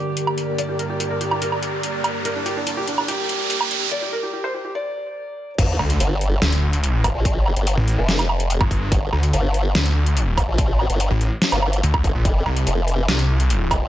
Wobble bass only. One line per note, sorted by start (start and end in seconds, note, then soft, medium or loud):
5.58 5.78 G1 loud
6.00 6.40 G1 loud
7.04 7.13 G1 loud
7.15 7.55 A#1 loud
7.57 7.76 G1 loud
7.98 8.59 F1 loud
8.92 9.11 G1 loud
9.33 9.73 G1 loud
10.38 10.46 G1 loud
10.48 10.88 A#1 loud
10.90 11.09 G1 loud
11.52 11.82 G1 loud
12.04 12.13 G1 loud
12.25 12.44 F1 loud
12.67 13.07 F1 loud
13.71 13.80 F1 loud
13.82 13.88 A1 loud